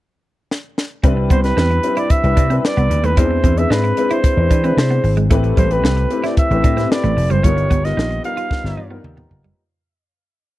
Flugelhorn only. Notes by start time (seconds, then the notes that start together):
1.31 C5
1.43 B4
1.97 D5
2.11 E5
2.58 E5
2.65 D5
3.05 B4
3.18 C5
3.58 E5
3.71 B4
4.11 C5
4.65 B4
4.78 C5
5.58 C5
5.72 B4
6.25 D5
6.38 E5
6.91 D5
7.31 C5
7.45 C#5
7.85 D#5
8.25 F5